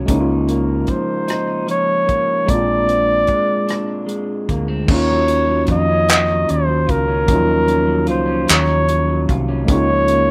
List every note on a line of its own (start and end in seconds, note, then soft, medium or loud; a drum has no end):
0.00 0.16 F#3 medium
0.00 0.47 C#4 medium
0.06 0.85 C#2 medium
0.06 2.48 C#3 medium
0.06 2.43 G#3 medium
0.06 2.44 A#3 medium
0.06 1.27 D#4 medium
0.06 kick loud
0.06 closed hi-hat medium
0.10 2.45 C#4 medium
0.10 2.46 D#4 medium
0.14 0.18 E4 medium
0.21 2.50 F4 medium
0.48 2.06 A#3 medium
0.48 0.92 A#4 medium
0.48 closed hi-hat soft
0.87 1.67 F3 medium
0.87 1.69 C5 medium
0.87 kick medium
0.87 closed hi-hat soft
1.28 2.46 D#4 medium
1.28 cross-stick medium
1.28 closed hi-hat medium
1.67 3.27 F3 medium
1.67 2.51 C#5 loud
1.67 closed hi-hat soft
2.06 2.86 A#3 medium
2.06 kick medium
2.06 closed hi-hat soft
2.45 4.87 A#2 medium
2.45 4.83 G#3 medium
2.45 4.84 A#3 medium
2.45 3.66 D4 medium
2.45 kick loud
2.45 closed hi-hat medium
2.50 3.25 A#1 medium
2.50 4.85 C4 soft
2.50 4.86 D4 soft
2.50 4.49 D5 loud
2.54 4.87 F4 medium
2.87 4.47 C4 medium
2.87 closed hi-hat soft
3.27 4.05 G#3 soft
3.27 kick medium
3.27 closed hi-hat soft
3.67 4.96 D4 medium
3.67 cross-stick medium
3.67 closed hi-hat medium
4.06 4.95 G#3 medium
4.06 closed hi-hat soft
4.49 4.85 D2 medium
4.49 4.68 A#3 medium
4.49 kick medium
4.49 closed hi-hat soft
4.68 4.96 C4 soft
4.86 5.65 D#2 loud
4.86 7.23 D#3 medium
4.86 7.24 A#3 soft
4.86 kick loud
4.86 crash loud
4.90 6.08 D#3 medium
4.90 7.25 C#4 medium
4.90 7.26 D#4 medium
4.90 5.66 C#5 loud
4.94 7.27 F4 medium
5.10 5.47 F#3 medium
5.28 5.89 C#4 medium
5.28 closed hi-hat medium
5.48 6.27 F#3 medium
5.67 6.45 F2 medium
5.67 6.86 F4 medium
5.67 kick medium
5.67 closed hi-hat soft
5.72 6.52 D#5 loud
5.89 6.48 C#4 medium
6.08 7.28 D#3 medium
6.08 clap medium
6.08 closed hi-hat medium
6.28 6.66 F#3 medium
6.48 6.85 D#2 medium
6.48 7.08 C#4 medium
6.48 6.92 C5 medium
6.48 closed hi-hat medium
6.67 7.47 F#3 medium
6.87 7.29 C#2 medium
6.87 8.07 F4 medium
6.87 8.09 A#4 loud
6.87 kick medium
6.87 closed hi-hat soft
7.08 7.67 C#4 medium
7.26 8.11 D#2 loud
7.26 8.47 D#3 medium
7.26 7.34 F3 soft
7.26 9.64 A#3 medium
7.26 9.65 C#4 medium
7.26 kick loud
7.26 closed hi-hat medium
7.33 9.66 F#3 medium
7.33 9.66 D#4 medium
7.33 9.67 F4 medium
7.48 7.86 F#3 medium
7.68 8.25 C#4 medium
7.68 closed hi-hat soft
7.87 8.67 F#3 medium
8.07 9.28 F4 medium
8.07 8.46 C5 medium
8.07 closed hi-hat soft
8.11 8.46 C#2 medium
8.26 8.87 C#4 medium
8.47 9.25 D#2 loud
8.47 9.69 D#3 medium
8.47 9.36 C#5 loud
8.47 clap loud
8.47 closed hi-hat medium
8.68 9.06 F#3 medium
8.88 9.48 C#4 medium
8.88 closed hi-hat medium
9.08 9.76 F#3 medium
9.28 9.65 C2 loud
9.28 10.31 F4 medium
9.28 kick medium
9.28 closed hi-hat soft
9.48 10.10 C#4 medium
9.65 10.31 G#3 medium
9.65 10.31 A#3 medium
9.65 kick loud
9.65 closed hi-hat medium
9.69 10.31 C#2 loud
9.69 10.31 C#3 medium
9.69 10.31 C#4 medium
9.69 10.31 D#4 medium
9.69 10.31 C#5 loud
9.74 10.31 F4 medium
9.90 10.28 F3 medium
10.08 10.31 A#3 medium
10.08 closed hi-hat medium